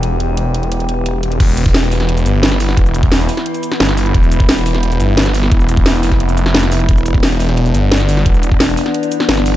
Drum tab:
CC |----------------|x---------------|----------------|----------------|
HH |x-x-x-xxxxx-x-xx|x-x-x-oxxxx-x-o-|x-x-x-oxxxx-x-ox|x-x-x-oxxxx-x-o-|
SH |----------------|-xx--xx--xx--xx-|-xx--xx--xx--xx-|-xx--xx--xx--xx-|
SD |----------------|----o--o----oo-o|----o--o---ooo--|----o--o----oo-o|
BD |----------------|o--o------------|o--o------------|o--o------------|

CC |----------------|----------------|----------------|
HH |x-x-x-oxxxx-x-ox|x-x-x-oxxxx-x-o-|x-x-x-oxxxx-x-o-|
SH |-xx--xx--xx--xx-|-xx--xx--xx--xx-|-xx--xx--xx--xx-|
SD |----o--o---ooo--|----o--o----oo-o|----o--o---ooo--|
BD |o--o---o--------|o--o------------|o--o------------|